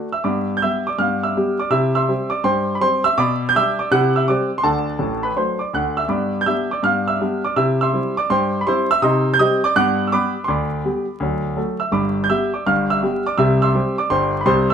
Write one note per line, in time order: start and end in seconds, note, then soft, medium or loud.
0.00 0.12 B4 medium
0.12 0.25 E5 medium
0.12 0.25 E6 medium
0.24 0.56 G2 medium
0.24 0.46 B3 soft
0.24 0.53 D5 soft
0.24 0.53 B5 soft
0.24 0.54 D6 medium
0.57 0.62 G6 medium
0.62 0.82 G3 soft
0.62 0.82 B3 soft
0.62 0.83 G4 soft
0.62 0.84 E5 medium
0.62 0.86 E6 medium
0.87 0.99 D5 medium
0.87 0.99 D6 medium
0.98 1.30 G2 medium
0.98 1.20 B3 soft
0.98 1.22 F5 medium
0.98 1.22 F6 medium
1.23 1.57 E5 soft
1.23 1.59 E6 medium
1.37 1.56 G3 soft
1.37 1.57 B3 soft
1.37 1.57 G4 soft
1.59 1.72 D5 medium
1.59 1.72 D6 medium
1.70 2.02 C3 medium
1.70 1.92 E4 soft
1.70 1.94 E5 medium
1.70 1.94 E6 medium
1.95 2.30 E5 medium
1.95 2.30 C6 medium
1.95 2.32 E6 medium
2.08 2.28 G3 soft
2.08 2.29 C4 soft
2.08 2.29 G4 medium
2.30 2.44 D5 medium
2.30 2.44 D6 medium
2.44 2.76 G2 medium
2.44 2.73 C5 medium
2.44 2.73 G5 medium
2.44 2.75 C6 medium
2.75 2.82 B5 medium
2.81 3.01 G3 medium
2.81 3.01 C4 medium
2.81 3.02 G4 medium
2.81 3.04 C5 medium
2.81 3.05 C6 loud
3.04 3.18 E5 medium
3.04 3.18 E6 loud
3.17 3.49 B2 medium
3.17 3.47 D5 medium
3.17 3.47 B5 medium
3.17 3.48 D6 loud
3.49 3.55 G6 loud
3.55 3.75 G3 medium
3.55 3.76 D4 soft
3.55 3.76 G4 medium
3.55 3.78 E5 medium
3.55 3.79 E6 loud
3.79 3.92 D5 medium
3.79 3.92 D6 medium
3.91 4.23 C3 medium
3.91 4.13 E4 medium
3.91 4.14 F#5 medium
3.91 4.15 F#6 loud
4.16 4.28 E5 medium
4.16 4.29 E6 medium
4.28 4.49 G3 soft
4.28 4.49 C4 medium
4.28 4.49 G4 medium
4.28 4.57 D5 medium
4.28 4.58 D6 medium
4.58 4.65 C6 medium
4.63 4.93 D2 medium
4.63 4.93 D3 medium
4.63 5.21 A4 medium
4.63 5.21 F#5 medium
4.63 5.25 A5 medium
4.99 5.29 A1 medium
4.99 5.29 A2 medium
5.23 5.37 B4 medium
5.23 5.37 B5 medium
5.36 5.57 F#3 soft
5.36 5.57 A3 soft
5.36 5.56 D4 soft
5.36 5.60 C5 medium
5.36 5.61 C6 medium
5.59 5.73 D5 medium
5.59 5.73 D6 medium
5.73 6.03 D2 medium
5.73 6.03 D3 medium
5.73 5.97 F#5 medium
5.73 5.98 F#6 medium
5.97 6.10 E5 medium
5.97 6.11 E6 medium
6.08 6.41 G2 medium
6.08 6.31 B3 soft
6.08 6.38 D5 medium
6.08 6.38 B5 soft
6.08 6.40 D6 medium
6.41 6.48 G6 medium
6.46 6.67 G3 soft
6.46 6.67 B3 soft
6.46 6.67 D4 soft
6.46 6.69 E5 medium
6.46 6.71 E6 medium
6.71 6.84 D5 medium
6.71 6.84 D6 medium
6.83 7.14 G2 medium
6.83 7.05 B3 soft
6.83 7.07 F5 medium
6.83 7.07 F6 medium
7.08 7.42 E5 medium
7.08 7.44 E6 medium
7.20 7.40 G3 soft
7.20 7.41 B3 soft
7.20 7.41 D4 medium
7.44 7.57 D5 medium
7.44 7.57 D6 medium
7.56 7.87 C3 medium
7.56 7.78 E4 soft
7.56 7.79 E5 medium
7.56 7.80 E6 medium
7.81 8.15 E5 medium
7.81 8.16 C6 medium
7.81 8.17 E6 medium
7.93 8.13 G3 soft
7.93 8.14 C4 soft
7.93 8.14 E4 soft
8.17 8.30 D5 medium
8.17 8.30 D6 medium
8.30 8.61 G2 medium
8.30 8.59 C5 medium
8.30 8.58 G5 medium
8.30 8.60 C6 medium
8.61 8.67 B5 medium
8.66 8.86 G3 medium
8.66 8.87 C4 medium
8.66 8.87 E4 medium
8.66 8.89 C5 medium
8.66 8.90 C6 medium
8.91 9.03 E5 medium
8.91 9.03 E6 loud
9.02 9.33 C3 medium
9.02 9.24 D#4 medium
9.02 9.31 D#5 medium
9.02 9.31 C6 medium
9.02 9.32 D#6 loud
9.34 9.39 G6 loud
9.39 9.59 G3 medium
9.39 9.60 C4 medium
9.39 9.60 G4 medium
9.39 9.62 D#5 medium
9.39 9.62 D#6 loud
9.64 9.76 D5 medium
9.64 9.76 D6 loud
9.76 10.06 G2 medium
9.76 9.97 B3 medium
9.76 10.04 F#5 medium
9.76 10.04 D6 medium
9.76 10.05 F#6 loud
10.07 10.13 E6 medium
10.12 10.32 G3 soft
10.12 10.32 B3 medium
10.12 10.32 G4 medium
10.12 10.40 D5 medium
10.12 10.40 B5 medium
10.12 10.42 D6 loud
10.44 10.79 D2 medium
10.44 10.49 C6 medium
10.44 11.57 D6 medium
10.49 11.53 D5 medium
10.49 11.53 B5 medium
10.85 11.04 G3 soft
10.85 11.05 B3 soft
10.85 11.05 G4 soft
11.20 11.51 D2 medium
11.20 11.42 F#3 soft
11.56 11.76 F#3 soft
11.56 11.76 A3 soft
11.56 11.77 A4 soft
11.80 11.92 E5 soft
11.80 11.93 E6 medium
11.92 12.23 G1 medium
11.92 12.23 G2 medium
11.92 12.21 D5 soft
11.92 12.21 B5 medium
11.92 12.22 D6 medium
12.24 12.30 G6 medium
12.29 12.49 G3 soft
12.29 12.49 B3 soft
12.29 12.50 G4 soft
12.29 12.52 E5 medium
12.29 12.53 E6 medium
12.54 12.66 D5 medium
12.54 12.66 D6 medium
12.66 12.97 G1 medium
12.66 12.97 G2 medium
12.66 12.88 F5 medium
12.66 12.90 F6 medium
12.90 13.24 E5 medium
12.90 13.26 E6 medium
13.03 13.22 G3 soft
13.03 13.23 B3 soft
13.03 13.23 G4 medium
13.26 13.38 D5 medium
13.26 13.39 D6 medium
13.38 13.69 C2 medium
13.38 13.69 C3 medium
13.38 13.61 E5 medium
13.38 13.61 E6 medium
13.62 13.96 E5 medium
13.62 13.96 C6 medium
13.62 13.98 E6 medium
13.74 13.94 G3 soft
13.74 13.95 C4 soft
13.74 13.95 G4 medium
13.98 14.11 D5 medium
13.98 14.11 D6 medium
14.10 14.42 G1 medium
14.10 14.42 G2 medium
14.10 14.39 C5 medium
14.10 14.39 G5 medium
14.10 14.41 C6 medium
14.41 14.47 B5 medium
14.46 14.74 C2 medium
14.46 14.74 C3 medium
14.46 14.69 C5 medium
14.46 14.70 C6 loud
14.70 14.74 E6 medium